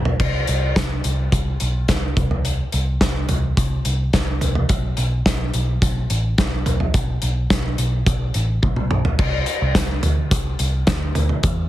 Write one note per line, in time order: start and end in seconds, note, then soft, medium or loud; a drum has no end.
0.00 0.15 B1 medium
0.05 floor tom medium
0.20 0.43 C2 medium
0.20 kick medium
0.20 crash medium
0.47 0.71 C2 medium
0.47 closed hi-hat medium
0.76 0.99 C2 medium
0.76 kick medium
0.76 snare loud
0.76 closed hi-hat medium
1.04 1.28 C2 medium
1.04 closed hi-hat medium
1.32 1.55 C2 medium
1.32 kick medium
1.32 closed hi-hat medium
1.60 1.84 B1 medium
1.60 closed hi-hat medium
1.88 2.12 C2 medium
1.88 kick medium
1.88 snare medium
1.88 closed hi-hat medium
2.17 2.63 C2 medium
2.17 kick medium
2.17 closed hi-hat medium
2.17 floor tom medium
2.31 floor tom medium
2.45 closed hi-hat medium
2.72 2.96 C2 medium
2.72 closed hi-hat medium
3.01 kick medium
3.01 snare loud
3.01 closed hi-hat medium
3.29 3.52 C2 medium
3.29 closed hi-hat medium
3.29 floor tom medium
3.57 3.80 C2 medium
3.57 kick loud
3.57 closed hi-hat medium
3.85 4.08 C2 medium
3.85 closed hi-hat medium
4.13 4.37 C2 medium
4.13 kick medium
4.13 snare medium
4.13 closed hi-hat medium
4.41 4.65 C2 medium
4.41 closed hi-hat medium
4.41 floor tom soft
4.55 floor tom medium
4.69 4.93 B1 medium
4.69 kick loud
4.69 closed hi-hat medium
4.97 5.21 B1 medium
4.97 closed hi-hat medium
5.26 5.49 B1 medium
5.26 kick loud
5.26 snare loud
5.26 closed hi-hat medium
5.54 5.77 B1 medium
5.54 closed hi-hat medium
5.82 6.05 B1 medium
5.82 kick loud
5.82 closed hi-hat medium
6.10 6.33 A1 medium
6.10 closed hi-hat medium
6.38 6.61 B1 medium
6.38 kick medium
6.38 snare medium
6.38 closed hi-hat medium
6.66 6.89 B1 medium
6.66 closed hi-hat medium
6.66 floor tom medium
6.80 floor tom medium
6.94 7.17 B1 medium
6.94 kick loud
6.94 closed hi-hat medium
7.22 7.46 B1 medium
7.22 closed hi-hat medium
7.50 7.74 B1 medium
7.50 kick loud
7.50 snare loud
7.50 closed hi-hat medium
7.78 8.01 B1 medium
7.78 closed hi-hat medium
8.06 8.30 B1 medium
8.06 kick loud
8.06 closed hi-hat medium
8.34 8.58 A1 medium
8.34 closed hi-hat medium
8.63 8.86 B1 loud
8.63 kick medium
8.63 high tom soft
8.76 mid tom medium
8.91 9.14 B1 medium
8.91 mid tom medium
9.05 floor tom medium
9.19 9.42 C2 medium
9.19 kick loud
9.19 crash medium
9.46 closed hi-hat medium
9.62 9.73 C2 medium
9.75 9.98 C2 medium
9.75 kick loud
9.75 snare loud
9.75 closed hi-hat medium
10.03 10.32 D2 medium
10.03 closed hi-hat medium
10.03 floor tom medium
10.31 10.54 C2 loud
10.31 kick loud
10.31 closed hi-hat medium
10.59 10.83 C2 medium
10.59 closed hi-hat medium
10.87 11.11 D2 medium
10.87 kick medium
10.87 snare loud
10.87 closed hi-hat medium
11.15 11.39 D2 medium
11.15 closed hi-hat medium
11.15 floor tom medium
11.29 floor tom medium
11.43 11.67 E2 medium
11.43 kick loud
11.43 closed hi-hat medium